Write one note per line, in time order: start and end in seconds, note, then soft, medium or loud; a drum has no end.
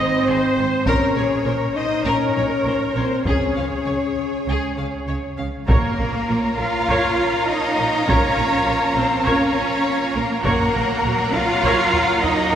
0.00 0.86 C4 loud
0.00 0.84 C5 medium
0.00 0.27 D#5 medium
0.27 0.36 G#1 medium
0.27 0.36 G#2 soft
0.27 0.36 G#4 medium
0.27 0.86 C5 medium
0.57 0.65 G#1 medium
0.57 0.65 G#2 medium
0.57 0.67 C5 soft
0.86 0.94 A#1 medium
0.86 0.95 A#2 medium
0.86 1.73 C#4 medium
0.86 1.14 A#4 medium
0.86 1.15 A#4 medium
0.86 1.75 C#5 medium
0.86 taiko medium
1.15 1.23 A#1 medium
1.15 1.24 A#2 soft
1.15 1.46 G#4 medium
1.15 1.25 C#5 soft
1.45 1.53 A#1 soft
1.45 1.54 A#2 soft
1.45 1.75 A#4 medium
1.45 1.55 C5 soft
1.75 2.05 D#4 medium
1.75 2.05 C5 medium
1.75 2.05 D#5 medium
2.04 2.13 A#1 medium
2.04 2.13 A#2 medium
2.04 2.96 C#4 medium
2.04 3.25 A#4 medium
2.04 2.33 A#4 medium
2.04 2.95 C#5 medium
2.35 2.43 A#1 soft
2.35 2.44 A#2 soft
2.35 2.45 C#5 soft
2.65 2.73 A#1 soft
2.65 2.73 A#2 soft
2.65 2.75 C5 soft
2.93 3.03 A#1 soft
2.93 3.03 A#2 soft
2.93 3.26 C4 medium
2.93 3.25 C5 medium
2.93 3.04 C#5 soft
3.25 3.33 C#2 medium
3.25 3.33 C#3 medium
3.25 5.38 C#4 medium
3.25 5.34 G#4 medium
3.25 3.54 G#4 medium
3.25 5.34 C#5 medium
3.25 taiko medium
3.56 3.64 C#2 soft
3.56 3.64 C#3 soft
3.56 3.64 F5 soft
3.85 3.94 C#2 soft
3.85 3.94 C#3 soft
3.85 3.93 C#5 soft
4.46 4.54 C#2 medium
4.46 4.55 C#3 medium
4.46 4.76 G#4 medium
4.77 4.85 C#2 soft
4.77 4.85 C#3 soft
4.77 4.85 F5 soft
5.07 5.15 C#2 soft
5.07 5.16 C#3 soft
5.07 5.16 C#5 soft
5.38 5.46 C#2 soft
5.38 5.46 C#3 soft
5.38 5.46 F5 soft
5.68 5.77 A#1 medium
5.68 6.55 A#2 medium
5.68 10.40 F3 medium
5.68 6.55 A#3 medium
5.68 10.41 A#3 medium
5.68 10.40 C#4 medium
5.68 10.41 F4 medium
5.68 5.96 A#4 medium
5.68 6.55 A#4 medium
5.68 10.41 A#4 medium
5.68 5.96 C#5 medium
5.68 10.41 C#5 medium
5.68 10.41 F5 medium
5.68 10.41 A#5 medium
5.68 taiko loud
5.99 6.07 A#1 soft
5.99 6.07 A#4 soft
6.28 6.37 A#1 soft
6.28 6.36 F4 soft
6.28 6.36 A#4 soft
6.57 6.67 A#1 soft
6.57 7.49 F4 medium
6.57 6.66 A#4 soft
6.57 7.46 F5 medium
6.89 6.97 A#1 medium
6.89 7.17 A#4 medium
6.89 7.17 C#5 medium
6.89 taiko medium
7.48 8.08 D#4 medium
7.48 8.06 D#5 medium
7.77 7.86 A#1 soft
7.77 7.86 A#4 soft
8.07 8.16 A#1 medium
8.07 8.95 C#4 medium
8.07 8.36 A#4 medium
8.07 8.96 C#5 medium
8.07 8.35 C#5 medium
8.07 taiko loud
8.37 8.46 A#1 medium
8.37 8.45 A#4 soft
8.66 8.74 A#1 soft
8.66 8.74 F4 soft
8.66 8.74 A#4 soft
8.96 9.04 A#1 soft
8.96 9.26 C4 medium
8.96 9.05 A#4 soft
8.96 9.26 C5 medium
9.25 9.33 A#1 medium
9.25 10.15 C#4 medium
9.25 9.53 A#4 medium
9.25 9.53 C#5 medium
9.25 10.15 C#5 medium
9.25 taiko medium
10.14 10.23 A#1 soft
10.14 10.44 A#3 medium
10.14 10.43 A#4 medium
10.14 10.23 A#4 soft
10.43 10.52 A#1 medium
10.43 12.55 F#3 medium
10.43 12.55 A#3 medium
10.43 11.32 A#3 medium
10.43 12.55 C#4 medium
10.43 12.55 A#4 medium
10.43 11.32 A#4 medium
10.43 10.72 A#4 medium
10.43 12.55 C#5 medium
10.43 10.72 C#5 medium
10.43 12.55 F#5 medium
10.43 12.55 A#5 medium
10.43 taiko medium
10.74 10.82 A#1 medium
10.74 10.84 A#4 soft
11.04 11.12 A#1 soft
11.04 11.14 F#4 medium
11.04 11.14 A#4 medium
11.04 taiko low soft
11.33 11.42 A#1 medium
11.33 12.22 F4 medium
11.33 11.44 A#4 medium
11.33 12.22 F5 medium
11.63 11.71 A#1 medium
11.63 11.92 A#4 medium
11.63 11.92 C#5 medium
11.63 taiko medium
11.93 taiko low medium
12.22 12.55 D#4 medium
12.22 12.55 D#5 medium
12.22 taiko low medium
12.52 12.54 A#4 medium